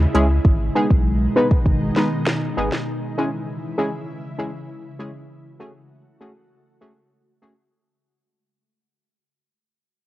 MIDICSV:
0, 0, Header, 1, 5, 480
1, 0, Start_track
1, 0, Tempo, 606061
1, 352, Time_signature, 4, 2, 24, 8
1, 7971, End_track
2, 0, Start_track
2, 0, Title_t, "Synth stab"
2, 0, Program_c, 0, 62
2, 113, Note_on_c, 0, 56, 93
2, 113, Note_on_c, 0, 61, 85
2, 113, Note_on_c, 0, 64, 84
2, 113, Note_on_c, 0, 68, 102
2, 209, Note_off_c, 0, 56, 0
2, 209, Note_off_c, 0, 61, 0
2, 209, Note_off_c, 0, 64, 0
2, 209, Note_off_c, 0, 68, 0
2, 595, Note_on_c, 0, 63, 83
2, 596, Note_on_c, 0, 56, 85
2, 596, Note_on_c, 0, 59, 78
2, 596, Note_on_c, 0, 68, 99
2, 690, Note_off_c, 0, 56, 0
2, 690, Note_off_c, 0, 59, 0
2, 690, Note_off_c, 0, 63, 0
2, 690, Note_off_c, 0, 68, 0
2, 1075, Note_on_c, 0, 56, 85
2, 1075, Note_on_c, 0, 59, 82
2, 1075, Note_on_c, 0, 63, 82
2, 1076, Note_on_c, 0, 71, 96
2, 1170, Note_off_c, 0, 56, 0
2, 1170, Note_off_c, 0, 59, 0
2, 1170, Note_off_c, 0, 63, 0
2, 1170, Note_off_c, 0, 71, 0
2, 1555, Note_on_c, 0, 56, 90
2, 1555, Note_on_c, 0, 59, 79
2, 1555, Note_on_c, 0, 63, 81
2, 1555, Note_on_c, 0, 71, 99
2, 1650, Note_off_c, 0, 56, 0
2, 1650, Note_off_c, 0, 59, 0
2, 1650, Note_off_c, 0, 63, 0
2, 1650, Note_off_c, 0, 71, 0
2, 2033, Note_on_c, 0, 56, 91
2, 2033, Note_on_c, 0, 59, 86
2, 2033, Note_on_c, 0, 63, 80
2, 2034, Note_on_c, 0, 68, 103
2, 2129, Note_off_c, 0, 56, 0
2, 2129, Note_off_c, 0, 59, 0
2, 2129, Note_off_c, 0, 63, 0
2, 2129, Note_off_c, 0, 68, 0
2, 2514, Note_on_c, 0, 61, 82
2, 2515, Note_on_c, 0, 56, 87
2, 2515, Note_on_c, 0, 64, 78
2, 2515, Note_on_c, 0, 68, 96
2, 2609, Note_off_c, 0, 61, 0
2, 2610, Note_off_c, 0, 56, 0
2, 2610, Note_off_c, 0, 64, 0
2, 2610, Note_off_c, 0, 68, 0
2, 2992, Note_on_c, 0, 56, 92
2, 2992, Note_on_c, 0, 61, 82
2, 2992, Note_on_c, 0, 68, 99
2, 2993, Note_on_c, 0, 64, 85
2, 3088, Note_off_c, 0, 56, 0
2, 3088, Note_off_c, 0, 61, 0
2, 3088, Note_off_c, 0, 68, 0
2, 3089, Note_off_c, 0, 64, 0
2, 3473, Note_on_c, 0, 56, 87
2, 3473, Note_on_c, 0, 61, 84
2, 3473, Note_on_c, 0, 64, 84
2, 3473, Note_on_c, 0, 68, 98
2, 3569, Note_off_c, 0, 56, 0
2, 3569, Note_off_c, 0, 61, 0
2, 3569, Note_off_c, 0, 64, 0
2, 3569, Note_off_c, 0, 68, 0
2, 3954, Note_on_c, 0, 56, 90
2, 3954, Note_on_c, 0, 61, 85
2, 3954, Note_on_c, 0, 68, 100
2, 3955, Note_on_c, 0, 64, 81
2, 4049, Note_off_c, 0, 61, 0
2, 4049, Note_off_c, 0, 68, 0
2, 4050, Note_off_c, 0, 56, 0
2, 4050, Note_off_c, 0, 64, 0
2, 4433, Note_on_c, 0, 57, 91
2, 4433, Note_on_c, 0, 61, 78
2, 4434, Note_on_c, 0, 66, 83
2, 4435, Note_on_c, 0, 68, 96
2, 4529, Note_off_c, 0, 57, 0
2, 4529, Note_off_c, 0, 61, 0
2, 4529, Note_off_c, 0, 66, 0
2, 4530, Note_off_c, 0, 68, 0
2, 4914, Note_on_c, 0, 57, 84
2, 4915, Note_on_c, 0, 61, 80
2, 4915, Note_on_c, 0, 66, 81
2, 4915, Note_on_c, 0, 68, 94
2, 5009, Note_off_c, 0, 57, 0
2, 5010, Note_off_c, 0, 61, 0
2, 5010, Note_off_c, 0, 66, 0
2, 5010, Note_off_c, 0, 68, 0
2, 5393, Note_on_c, 0, 66, 82
2, 5394, Note_on_c, 0, 57, 87
2, 5394, Note_on_c, 0, 68, 95
2, 5395, Note_on_c, 0, 61, 83
2, 5489, Note_off_c, 0, 57, 0
2, 5489, Note_off_c, 0, 66, 0
2, 5489, Note_off_c, 0, 68, 0
2, 5490, Note_off_c, 0, 61, 0
2, 5875, Note_on_c, 0, 57, 89
2, 5875, Note_on_c, 0, 61, 81
2, 5875, Note_on_c, 0, 66, 85
2, 5875, Note_on_c, 0, 68, 98
2, 5970, Note_off_c, 0, 57, 0
2, 5970, Note_off_c, 0, 61, 0
2, 5970, Note_off_c, 0, 66, 0
2, 5970, Note_off_c, 0, 68, 0
2, 7971, End_track
3, 0, Start_track
3, 0, Title_t, "Ambient pad"
3, 0, Program_c, 1, 92
3, 0, Note_on_c, 1, 49, 83
3, 0, Note_on_c, 1, 56, 79
3, 0, Note_on_c, 1, 64, 89
3, 333, Note_off_c, 1, 49, 0
3, 334, Note_off_c, 1, 64, 0
3, 354, Note_on_c, 1, 47, 79
3, 355, Note_on_c, 1, 51, 78
3, 355, Note_on_c, 1, 63, 90
3, 2254, Note_off_c, 1, 47, 0
3, 2255, Note_off_c, 1, 51, 0
3, 2255, Note_off_c, 1, 63, 0
3, 2274, Note_on_c, 1, 52, 73
3, 2275, Note_on_c, 1, 64, 89
3, 2276, Note_on_c, 1, 49, 79
3, 4174, Note_off_c, 1, 52, 0
3, 4175, Note_off_c, 1, 64, 0
3, 4193, Note_on_c, 1, 57, 74
3, 4194, Note_on_c, 1, 66, 88
3, 6082, Note_off_c, 1, 49, 0
3, 6082, Note_off_c, 1, 56, 0
3, 6094, Note_off_c, 1, 57, 0
3, 6094, Note_off_c, 1, 66, 0
3, 7971, End_track
4, 0, Start_track
4, 0, Title_t, "Sub bass"
4, 0, Program_c, 2, 38
4, 113, Note_on_c, 2, 37, 91
4, 309, Note_off_c, 2, 37, 0
4, 354, Note_on_c, 2, 32, 103
4, 550, Note_off_c, 2, 32, 0
4, 716, Note_on_c, 2, 35, 90
4, 1009, Note_off_c, 2, 35, 0
4, 1311, Note_on_c, 2, 32, 100
4, 1508, Note_off_c, 2, 32, 0
4, 2034, Note_on_c, 2, 32, 84
4, 2132, Note_off_c, 2, 32, 0
4, 7971, End_track
5, 0, Start_track
5, 0, Title_t, "Drums"
5, 116, Note_on_c, 9, 42, 49
5, 195, Note_off_c, 9, 42, 0
5, 354, Note_on_c, 9, 36, 102
5, 434, Note_off_c, 9, 36, 0
5, 716, Note_on_c, 9, 36, 88
5, 796, Note_off_c, 9, 36, 0
5, 1195, Note_on_c, 9, 36, 88
5, 1275, Note_off_c, 9, 36, 0
5, 1312, Note_on_c, 9, 36, 94
5, 1391, Note_off_c, 9, 36, 0
5, 1551, Note_on_c, 9, 38, 62
5, 1631, Note_off_c, 9, 38, 0
5, 1792, Note_on_c, 9, 38, 112
5, 1871, Note_off_c, 9, 38, 0
5, 2153, Note_on_c, 9, 38, 67
5, 2232, Note_off_c, 9, 38, 0
5, 7971, End_track
0, 0, End_of_file